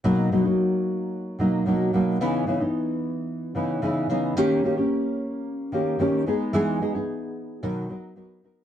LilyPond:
\new Staff \with { instrumentName = "Nylon-string guitar" } { \time 4/4 \key b \major \tempo 4 = 111 <b, fis ais dis'>8 <b, fis ais dis'>16 <fis ais dis'>4.~ <fis ais dis'>16 <b, fis ais dis'>8 <b, fis ais dis'>8 <b, fis ais dis'>8 | <cis e b dis'>8 <cis e b dis'>16 <e b dis'>4.~ <e b dis'>16 <cis e b dis'>8 <cis e b dis'>8 <cis e b dis'>8 | <dis ais cis' g'>8 <dis ais cis' g'>16 <ais cis' g'>4.~ <ais cis' g'>16 <dis ais cis' g'>8 <dis ais cis' g'>8 <gis b dis' gis'>8 | <e gis b dis' gis'>8 <gis b dis' gis'>16 <b dis' gis'>4~ <b dis' gis'>16 <b, dis fis b dis' ais'>8 <fis b dis' ais'>8 <fis b dis' ais'>8 <fis b dis' ais'>8 | }